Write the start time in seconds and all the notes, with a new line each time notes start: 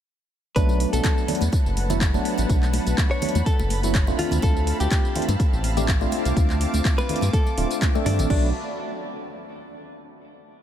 0.56 B1 F#3 A3 B3 D4 B4 F#5 A5 B5, kick, closed hi-hat, tambourine, high conga
0.69 tambourine, muted conga
0.80 open hi-hat
0.93 B1 A4, closed hi-hat, tambourine, high conga
1.04 kick, clap, closed hi-hat, tambourine, muted conga
1.18 tambourine
1.28 F#3 A3 B3 D4, open hi-hat, low conga
1.35 closed hi-hat
1.41 E2, closed hi-hat, tambourine, high conga
1.52 kick, closed hi-hat, tambourine, muted conga
1.66 F#1, tambourine
1.77 open hi-hat, high conga
1.90 F#3 A3 B3 E4, closed hi-hat, tambourine, muted conga, low conga
2.01 kick, clap, closed hi-hat, tambourine
2.14 F#3 A3 B3 D4, tambourine, high conga
2.25 open hi-hat
2.38 A1, closed hi-hat, tambourine, muted conga
2.49 B1, kick, closed hi-hat, tambourine, high conga
2.63 clap, tambourine
2.73 open hi-hat, muted conga
2.86 B1, closed hi-hat, tambourine, high conga
2.98 kick, clap, closed hi-hat, tambourine
3.11 C#5, tambourine
3.22 F#3 A3 B3 D4, open hi-hat, muted conga, low conga
3.29 closed hi-hat
3.35 E2, closed hi-hat, tambourine, high conga
3.46 A4, kick, closed hi-hat, tambourine
3.59 F#1, tambourine, muted conga
3.70 open hi-hat, high conga
3.83 F#3 A3 B3 E4, closed hi-hat, tambourine
3.95 kick, clap, closed hi-hat, tambourine
4.07 A3 C4 D4 F4, tambourine, muted conga, high conga
4.19 C4 F4 F5 A5, open hi-hat, low conga
4.31 D2, closed hi-hat, tambourine, low conga
4.42 D2 A4, kick, closed hi-hat, tambourine, muted conga, high conga
4.57 tambourine
4.67 open hi-hat
4.80 D2 G4, closed hi-hat, tambourine, high conga
4.91 kick, clap, closed hi-hat, tambourine, muted conga
5.05 tambourine
5.15 A3 C4 D4 F4, open hi-hat, low conga
5.22 closed hi-hat
5.29 G2, closed hi-hat, tambourine, muted conga, high conga
5.40 kick, closed hi-hat, tambourine
5.53 A1, tambourine
5.64 open hi-hat, high conga
5.77 A3 C4 D4 G4, closed hi-hat, tambourine, muted conga, low conga
5.88 kick, clap, closed hi-hat, tambourine
6.01 A3 C4 D4 F4, tambourine, high conga
6.12 D6, open hi-hat, muted conga
6.25 C2, closed hi-hat, tambourine
6.37 D2, kick, closed hi-hat, tambourine, high conga
6.50 clap, tambourine
6.61 open hi-hat, muted conga
6.73 D2, closed hi-hat, tambourine, high conga
6.85 kick, clap, closed hi-hat, tambourine
6.98 B4, tambourine, muted conga
7.09 A3 C4 D4 F4, open hi-hat, low conga
7.16 closed hi-hat
7.21 G2, closed hi-hat, tambourine, high conga
7.33 A4, kick, closed hi-hat, tambourine
7.46 tambourine, muted conga
7.57 D1 A3 C4 D4 F4, open hi-hat, high conga
7.71 closed hi-hat, tambourine
7.82 kick, clap, closed hi-hat, tambourine, muted conga
7.95 A3 C4 D4 A4, tambourine, high conga
8.06 G2 D4, open hi-hat, low conga
8.19 A1, closed hi-hat, tambourine, low conga
8.30 B1 F#3 A3 B3 D4 F#4 D5 A5 B5, kick, crash